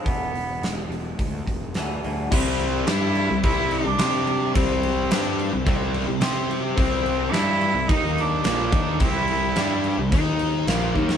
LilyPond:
<<
  \new Staff \with { instrumentName = "Cello" } { \time 4/4 \key c \major \tempo 4 = 108 b4 gis8 gis4. r4 | c'4 e'4 e'8 d'4. | c'2 r2 | c'4 e'4 ees'8 d'4. |
e'2 r2 | }
  \new Staff \with { instrumentName = "Distorted electric guitar" } { \clef bass \time 4/4 \key c \major r1 | <c g c'>4 <g d' g'>8. <c g>16 <c g c'>8. <c g>16 <c' g' c''>4 | <c g c'>4 <g d' g'>8. <c g>16 <c g c'>8. <c g>16 <c' g' c''>4 | <c g c'>4 <g d' g'>8. <c g>16 <ees bes ees'>4 <bes, f bes>8 <ees bes ees'>8 |
<c g c'>4 <g d' g'>8. <c g>16 <ees bes ees'>4 <bes, f bes>8 <ees bes ees'>8 | }
  \new Staff \with { instrumentName = "Clean electric guitar" } { \clef bass \time 4/4 \key c \major <e, b, e>8 <e, b,>8 <e, b,>8 <e, b,>8 <e, b,>8 <e, b,>8 <e, b, e>8 <e, b, e>8 | r1 | r1 | r1 |
r1 | }
  \new Staff \with { instrumentName = "Picked electric bass" } { \clef bass \time 4/4 \key c \major e,,8 e,,8 e,,8 e,,8 d,8 e,,8 d,8 d,8 | c,4 g,8. c,16 c,8. c,16 c4 | c,4 g,8. c,16 c,8. c,16 c4 | c,4 g,8. c,16 ees,4 bes,,8 ees,8 |
c,4 g,8. c,16 ees,4 bes,,8 ees,8 | }
  \new DrumStaff \with { instrumentName = "Drums" } \drummode { \time 4/4 <hho bd>8 hho8 <hho sn>8 hho8 <hho bd>8 <hho bd>8 <hho sn>8 hho8 | <cymc bd>8 cymc8 <cymc sn>8 cymc8 <cymc bd>8 cymc8 <cymc sn>8 cymc8 | <cymc bd>8 cymc8 <cymc sn>8 cymc8 <cymc bd>8 cymc8 <cymc sn>8 cymc8 | <cymc bd>8 cymc8 <cymc sn>8 cymc8 <cymc bd>8 cymc8 <cymc sn>8 <cymc bd>8 |
<cymc bd>8 cymc8 <cymc sn>8 cymc8 <cymc bd>8 cymc8 <cymc sn>8 bd16 sn16 | }
>>